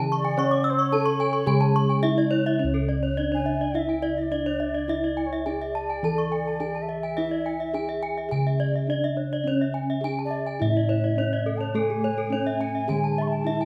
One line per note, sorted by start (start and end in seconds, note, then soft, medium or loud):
0.00 0.89 C#3 medium
0.00 0.38 E3 medium
0.00 0.39 G#4 medium
0.00 0.11 A5 medium
0.12 0.25 C#6 medium
0.18 0.71 D5 medium
0.25 0.38 G#5 medium
0.37 1.48 C#4 medium
0.37 0.92 C#5 medium
0.37 2.00 C#5 soft
0.37 0.52 C#6 medium
0.51 0.65 D6 medium
0.64 0.79 E6 medium
0.70 0.81 C5 medium
0.79 2.08 C#5 medium
0.79 0.93 C#6 medium
0.92 1.01 D4 soft
0.92 1.48 A4 medium
0.92 1.06 A5 medium
1.06 1.20 C#6 medium
1.20 1.34 G#5 medium
1.33 1.47 C#6 soft
1.46 3.13 C#3 medium
1.46 2.60 G#3 medium
1.46 2.03 G#4 medium
1.46 1.62 G#5 medium
1.61 1.75 A5 medium
1.76 1.90 C#6 medium
1.89 2.04 G#5 medium
2.03 2.12 D4 soft
2.03 2.60 E4 medium
2.03 2.17 E5 medium
2.18 2.32 D5 medium
2.31 2.46 C#5 medium
2.46 2.61 E5 medium
2.59 4.27 C#4 soft
2.59 3.17 C#4 soft
2.59 2.74 C#5 soft
2.64 6.01 C#2 medium
2.74 2.89 A4 soft
2.89 3.03 D5 soft
3.03 3.17 C#5 soft
3.17 3.75 D4 medium
3.17 3.25 D4 soft
3.17 3.32 D5 medium
3.32 3.46 C#5 soft
3.32 3.80 G#5 medium
3.46 3.60 E5 medium
3.61 3.75 D5 soft
3.74 4.32 E4 medium
3.74 3.89 E5 medium
3.79 4.24 E5 medium
3.89 4.03 G#5 soft
4.02 4.17 D5 medium
4.18 4.32 E5 soft
4.22 5.28 D5 medium
4.31 4.89 D4 soft
4.31 4.40 D4 soft
4.31 4.46 D5 medium
4.46 4.61 C#5 soft
4.60 4.75 E5 soft
4.75 4.89 D5 soft
4.88 5.46 E4 medium
4.88 6.57 E4 soft
4.88 5.04 E5 medium
5.04 5.18 D5 soft
5.17 5.32 G#5 soft
5.26 5.48 C#5 medium
5.33 5.47 E5 soft
5.46 5.54 D4 soft
5.46 6.03 G#4 medium
5.46 6.84 D5 medium
5.46 5.60 G#5 soft
5.62 5.75 E5 soft
5.75 5.89 A5 soft
5.90 6.04 G#5 soft
6.03 7.71 E3 medium
6.03 6.61 A4 medium
6.03 6.18 A5 medium
6.18 6.32 C#6 soft
6.32 6.46 G#5 soft
6.47 6.61 A5 soft
6.60 6.68 D4 soft
6.60 7.17 G#4 medium
6.60 6.75 G#5 soft
6.75 6.89 A5 soft
6.82 8.19 E5 medium
6.89 7.03 E5 soft
7.03 7.18 G#5 soft
7.17 7.75 E4 soft
7.17 8.85 E4 medium
7.17 7.32 E5 medium
7.31 7.46 D5 soft
7.46 7.60 G#5 soft
7.60 7.75 E5 soft
7.74 7.82 D4 soft
7.74 8.28 G#4 medium
7.74 7.89 G#5 medium
7.89 8.03 E5 soft
8.03 8.17 G#5 medium
8.18 8.32 E5 soft
8.29 10.00 C#3 medium
8.29 8.88 G#4 medium
8.29 8.46 G#5 medium
8.47 8.61 E5 soft
8.60 8.75 D5 medium
8.75 8.89 E5 soft
8.87 9.45 D4 soft
8.87 8.97 D4 soft
8.87 9.04 D5 medium
9.04 9.18 E5 soft
9.17 9.32 C#5 soft
9.33 9.47 D5 soft
9.44 10.02 C#4 medium
9.44 11.14 C#4 soft
9.44 9.61 C#5 medium
9.61 9.75 E5 soft
9.74 9.89 G#5 soft
9.90 10.04 E5 soft
10.01 10.12 D4 soft
10.01 10.59 G#4 medium
10.01 10.18 G#5 medium
10.19 10.32 A5 soft
10.25 10.72 D5 medium
10.31 10.46 E5 soft
10.46 10.61 G#5 soft
10.60 12.28 A2 medium
10.60 11.17 E4 medium
10.60 10.75 E5 medium
10.70 11.59 E5 medium
10.77 10.90 D5 soft
10.89 11.03 C#5 medium
11.04 11.18 D5 soft
11.16 11.74 C#4 soft
11.16 11.27 D4 soft
11.16 11.32 C#5 medium
11.33 11.47 D5 soft
11.46 11.61 A4 soft
11.57 11.75 C#5 soft
11.57 11.73 A5 medium
11.73 12.32 A3 medium
11.73 12.89 A3 soft
11.73 13.42 A4 medium
11.73 11.89 A4 medium
11.73 11.80 A5 soft
11.78 13.23 G#5 medium
11.90 12.04 G#4 soft
12.04 12.18 C#5 medium
12.18 12.32 A4 soft
12.30 12.88 C#4 medium
12.30 12.40 D4 soft
12.30 12.47 C#5 medium
12.47 12.61 E5 medium
12.61 12.75 G#5 medium
12.75 12.89 E5 soft
12.88 13.65 D3 medium
12.88 13.65 G#3 soft
12.88 13.46 G#4 medium
12.88 13.03 G#5 medium
13.04 13.18 A5 soft
13.18 13.32 E5 soft
13.18 13.30 C#6 soft
13.29 13.46 G#5 soft
13.29 13.65 A5 medium
13.44 13.55 D4 soft
13.44 13.65 E4 soft
13.44 13.61 E5 medium
13.61 13.65 G#5 soft